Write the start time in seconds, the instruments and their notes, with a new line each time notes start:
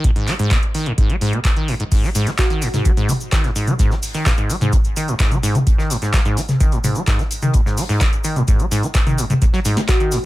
0.04 acid bass G#2, kick, closed hi-hat
0.16 acid bass G#2, closed hi-hat
0.28 acid bass G#3, clap, open hi-hat
0.39 acid bass G#2, closed hi-hat
0.51 acid bass B2, kick, clap, closed hi-hat
0.63 closed hi-hat
0.74 acid bass D#3, open hi-hat
0.86 acid bass G#2, closed hi-hat
0.98 acid bass G#2, kick, closed hi-hat
1.10 acid bass G#3, closed hi-hat
1.21 acid bass G#2, open hi-hat
1.33 acid bass B2, closed hi-hat
1.45 kick, clap, closed hi-hat
1.56 acid bass D#3, closed hi-hat
1.68 acid bass G#2, open hi-hat
1.80 acid bass G#2, closed hi-hat
1.92 acid bass G#2, kick, closed hi-hat, crash, cabasa
2.03 acid bass G#3, snare, cabasa
2.15 acid bass G#2, closed hi-hat, open hi-hat, cabasa
2.27 acid bass G#3, snare, closed hi-hat, cabasa
2.38 fm electric piano F#4, kick, snare, clap, closed hi-hat, cabasa
2.50 acid bass D#3, closed hi-hat, cabasa
2.62 acid bass G#2, snare, closed hi-hat, open hi-hat, cabasa
2.74 acid bass G#2, snare, closed hi-hat, mid tom, cabasa
2.85 acid bass G#3, kick, closed hi-hat, cabasa
2.97 acid bass G#2, closed hi-hat, cabasa
3.09 acid bass G#3, closed hi-hat, open hi-hat, mid tom, cabasa
3.21 closed hi-hat, cabasa
3.32 acid bass D#3, kick, snare, clap, closed hi-hat, cabasa
3.44 acid bass G#2, snare, closed hi-hat, cabasa
3.56 acid bass G#2, closed hi-hat, open hi-hat, cabasa
3.67 acid bass G#3, closed hi-hat, mid tom, cabasa
3.79 acid bass G#2, kick, closed hi-hat, cabasa
3.90 acid bass G#3, snare, cabasa
4.03 open hi-hat, cabasa
4.14 acid bass D#3, snare, closed hi-hat, cabasa
4.26 acid bass G#2, kick, snare, clap, closed hi-hat, cabasa
4.37 acid bass G#2, closed hi-hat, cabasa
4.50 acid bass G#3, closed hi-hat, open hi-hat, cabasa
4.61 acid bass G#2, closed hi-hat, mid tom, cabasa
4.73 acid bass G#3, kick, closed hi-hat, cabasa
4.84 closed hi-hat, cabasa
4.96 acid bass D#3, closed hi-hat, open hi-hat, cabasa
5.08 acid bass G#2, closed hi-hat, cabasa
5.19 acid bass G#2, kick, snare, clap, closed hi-hat, cabasa
5.31 acid bass G#3, closed hi-hat, mid tom, cabasa
5.43 acid bass G#2, closed hi-hat, open hi-hat, cabasa
5.55 acid bass G#3, closed hi-hat, mid tom, cabasa
5.67 kick, closed hi-hat, cabasa
5.78 acid bass D#3, snare, cabasa
5.90 acid bass G#2, closed hi-hat, open hi-hat, cabasa
6.02 acid bass G#2, snare, closed hi-hat, cabasa
6.13 acid bass G#3, kick, snare, clap, closed hi-hat, cabasa
6.25 acid bass G#2, closed hi-hat, cabasa
6.37 acid bass G#3, snare, closed hi-hat, open hi-hat, cabasa
6.49 snare, closed hi-hat, mid tom, cabasa
6.60 acid bass D#3, kick, closed hi-hat, cabasa
6.72 acid bass G#2, closed hi-hat, cabasa
6.84 acid bass G#2, closed hi-hat, open hi-hat, mid tom, cabasa
6.95 acid bass G#3, closed hi-hat, cabasa
7.07 acid bass G#2, kick, snare, clap, closed hi-hat, cabasa
7.19 acid bass G#3, snare, closed hi-hat, cabasa
7.31 closed hi-hat, open hi-hat, cabasa
7.42 acid bass D#3, closed hi-hat, mid tom, cabasa
7.54 acid bass G#2, kick, closed hi-hat, cabasa
7.66 acid bass G#2, snare, cabasa
7.78 acid bass G#3, open hi-hat, cabasa
7.89 acid bass G#2, snare, closed hi-hat, cabasa
8.00 acid bass G#3, kick, snare, clap, closed hi-hat, cabasa
8.13 closed hi-hat, cabasa
8.24 acid bass D#3, closed hi-hat, open hi-hat, cabasa
8.36 acid bass G#2, closed hi-hat, mid tom, cabasa
8.48 acid bass G#2, kick, closed hi-hat, cabasa
8.59 acid bass G#3, closed hi-hat, cabasa
8.71 acid bass G#2, closed hi-hat, open hi-hat, cabasa
8.83 acid bass G#3, closed hi-hat, cabasa
8.94 kick, snare, clap, closed hi-hat, cabasa
9.06 acid bass D#3, closed hi-hat, mid tom, cabasa
9.18 acid bass G#2, closed hi-hat, open hi-hat, cabasa
9.30 acid bass G#2, closed hi-hat, mid tom, cabasa
9.42 acid bass G#2, kick, closed hi-hat, cabasa
9.53 acid bass F#3, snare, cabasa
9.65 acid bass G#2, closed hi-hat, open hi-hat, cabasa
9.77 acid bass G#3, snare, closed hi-hat, cabasa
9.88 fm electric piano F#4, kick, snare, clap, closed hi-hat, cabasa
10.00 acid bass D#3, closed hi-hat, cabasa
10.12 acid bass G#2, snare, closed hi-hat, open hi-hat, cabasa